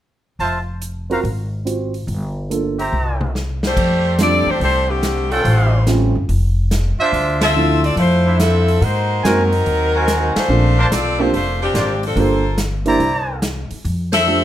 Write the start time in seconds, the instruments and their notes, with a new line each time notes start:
0.39 upright bass F1, trumpet section F4 C5 E5 A5, open hi-hat
0.82 closed hi-hat
1.10 grand piano C4 F4 F#4 A#4, trumpet section F#4 C5 F5 A#5, open hi-hat
1.24 upright bass G#1, open hi-hat
1.65 grand piano C4 F4 F#4 C5, closed hi-hat
1.94 open hi-hat
2.07 upright bass G1, open hi-hat
2.50 grand piano A#3 D4 F4 A4, closed hi-hat
2.79 trumpet section G4 C5 E5 A#5, open hi-hat
2.92 upright bass C2, mid tom
3.21 mid tom
3.35 snare
3.63 saxophone section A3 D4 G4 C5, snare
3.77 upright bass F2, kick, crash
4.18 grand piano G3 A3 C4 D4 F4, saxophone section C4 G4 A4 D5, snare, closed hi-hat
4.46 upright bass E2, saxophone section A3 D4 G4 C5
4.60 upright bass C2, saxophone section A3 D4 G4 C5, open hi-hat
4.89 saxophone section D3 A3 C4 G4
5.03 snare, closed hi-hat
5.30 saxophone section G3 C4 D4 A4, trumpet section C#4 F4 A4 G5, open hi-hat
5.43 upright bass A1, saxophone section G3 C#4 F4 C5, open hi-hat
5.87 grand piano G3 A3 C4 C#4 F4, snare, closed hi-hat
6.15 upright bass G1
6.29 upright bass F1, open hi-hat
6.71 snare, closed hi-hat
6.99 trumpet section D4 F4 C5 E5, muted upright bass stroke
7.12 upright bass D2, open hi-hat
7.41 saxophone section C4 F4 A4 E5, snare, ride
7.55 grand piano F3 A3 C4 D4 E4
7.83 saxophone section C4 F4 A4 D5, open hi-hat
7.96 upright bass F2, saxophone section A3 E4 F4 C5, open hi-hat
8.26 trumpet section D4 E4 C5 E5
8.39 saxophone section F3 C4 E4 A4, snare, closed hi-hat
8.68 open hi-hat
8.81 upright bass G#2, saxophone section A#3 D#4 F#4 C5, open hi-hat
9.23 upright bass F#2, saxophone section F#3 C4 D#4 A#4, grand piano G#3 A#3 C4 D#4 F#4, trumpet section F#4 A#4 C5 G#5, snare, closed hi-hat
9.52 open hi-hat
9.66 upright bass D#2, open hi-hat
9.94 trumpet section F#4 A#4 C5 G#5
10.08 snare, closed hi-hat
10.36 saxophone section A3 D4 F4 C5, muted upright bass stroke, snare, ride
10.48 upright bass A#1, grand piano A#3 C4 D4 F4 A4
10.78 trumpet section D4 A#4 C5 A5
10.91 upright bass B1, saxophone section C4 F4 A4 D5, snare, closed hi-hat
11.19 saxophone section A3 D4 F4 C5, grand piano A#3 C4 D4 F4 G4
11.33 upright bass F1, saxophone section A3 D4 F4 C5, open hi-hat
11.62 saxophone section F3 C4 D4 G4
11.73 upright bass G#1, trumpet section D4 A#4 C5 D5, snare, closed hi-hat
12.03 saxophone section F3 C4 D4 A4, open hi-hat
12.16 upright bass G1, grand piano A#3 D4 F4 G4 A4, saxophone section A#3 F4 A4 C5, open hi-hat
12.58 snare, closed hi-hat
12.85 grand piano A#3 D4 E4 G4 C5, trumpet section E4 C5 D5 A#5, open hi-hat
13.00 upright bass C2, open hi-hat
13.42 snare, closed hi-hat
13.71 muted upright bass stroke, open hi-hat
13.85 upright bass F2, open hi-hat
14.13 saxophone section D4 A4 C5 E5, snare, ride
14.26 grand piano A3 D4 F4 G4 C5